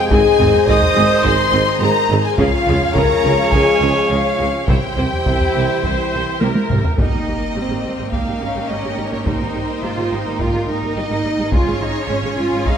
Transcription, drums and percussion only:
0.11 taiko
0.40 taiko low
0.54 taiko low
0.68 taiko
0.82 taiko low
1.24 taiko
2.38 taiko
2.67 taiko low
2.81 taiko low
2.95 taiko
3.10 taiko low
3.52 taiko
4.68 taiko
4.97 taiko low
5.12 taiko low
5.26 taiko
5.40 taiko low
5.84 taiko
6.41 taiko high
6.56 taiko high
6.70 taiko low-mid
6.84 taiko low
6.98 taiko
8.13 taiko
9.26 taiko
10.39 taiko
11.52 taiko
12.65 taiko

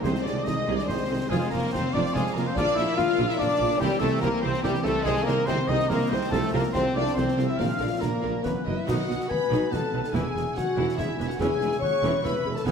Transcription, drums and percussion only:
0.04 concert bass drum, snare
0.15 snare
0.26 snare
0.47 concert bass drum, snare
0.79 snare
0.89 concert bass drum, snare
1.32 concert bass drum, snare
1.75 concert bass drum, snare
2.06 snare
2.16 concert bass drum, snare
2.26 snare
2.37 snare
2.57 concert bass drum, snare
2.68 snare
2.78 snare
2.99 concert bass drum, snare
3.30 snare
3.41 concert bass drum, snare
3.81 concert bass drum, snare, crash
4.23 concert bass drum, snare
4.54 snare
4.64 concert bass drum, snare
4.75 snare
4.85 snare
5.06 concert bass drum, snare
5.16 snare
5.28 snare
5.48 concert bass drum, snare
5.80 snare
5.90 concert bass drum, snare
6.33 concert bass drum, snare
6.75 concert bass drum, snare
7.07 snare
7.18 concert bass drum, snare
7.28 snare
7.39 snare
7.60 concert bass drum, snare
8.02 concert bass drum, snare
8.46 concert bass drum, snare
8.89 concert bass drum, snare, crash
9.10 snare
9.21 snare
9.31 concert bass drum
9.52 snare
9.74 concert bass drum, snare
10.04 snare
10.15 concert bass drum, snare
10.37 snare
10.58 concert bass drum, snare
10.89 snare
11.00 concert bass drum, snare
11.20 snare
11.30 snare
11.41 concert bass drum, snare
11.61 snare
11.72 snare
11.82 concert bass drum
12.04 snare
12.25 concert bass drum, snare
12.57 snare
12.67 concert bass drum, snare

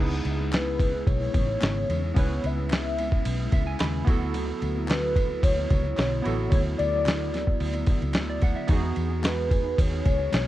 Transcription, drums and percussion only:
0.25 ride
0.53 snare, clap, ride
0.80 kick, ride
1.07 kick, ride
1.34 kick, ride
1.62 snare, clap, ride
1.90 ride
2.16 kick, ride
2.44 ride
2.70 snare, clap, ride
2.98 ride
3.12 kick
3.25 ride
3.52 kick, ride
3.79 snare, clap, ride
4.07 kick, ride
4.34 ride
4.62 ride
4.88 snare, clap, ride
5.16 kick, ride
5.43 kick, ride
5.70 kick, ride
5.97 snare, clap, ride
6.25 ride
6.52 kick, ride
6.79 ride
7.06 snare, clap, ride
7.34 snare, ride
7.47 kick
7.60 ride
7.74 ride
7.87 kick, ride
8.02 ride
8.14 snare, clap, ride
8.42 kick, ride
8.68 kick, ride
8.96 ride
9.24 snare, clap, ride
9.51 kick, ride
9.78 kick, ride
10.06 kick, ride
10.33 snare, clap, ride

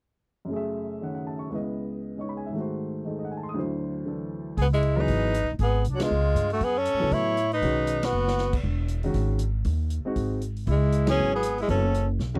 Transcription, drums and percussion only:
4.57 kick, open hi-hat
4.83 closed hi-hat
5.08 kick, open hi-hat
5.34 closed hi-hat
5.59 kick, open hi-hat
5.84 closed hi-hat
6.00 snare, ride
6.36 closed hi-hat
6.50 open hi-hat
6.61 kick, open hi-hat
6.85 closed hi-hat
7.11 kick, open hi-hat
7.37 closed hi-hat
7.52 open hi-hat
7.62 kick, open hi-hat
7.87 closed hi-hat
8.03 snare, ride
8.28 snare
8.38 snare
8.53 kick, crash
8.63 kick
8.88 closed hi-hat
9.03 open hi-hat
9.14 kick, open hi-hat
9.39 closed hi-hat
9.64 kick, open hi-hat
9.90 closed hi-hat
10.16 kick, open hi-hat
10.41 closed hi-hat
10.56 open hi-hat
10.67 kick, open hi-hat
10.92 closed hi-hat
11.07 snare, ride
11.43 closed hi-hat
11.58 open hi-hat
11.69 kick, open hi-hat
11.94 closed hi-hat
12.19 snare
12.35 floor tom

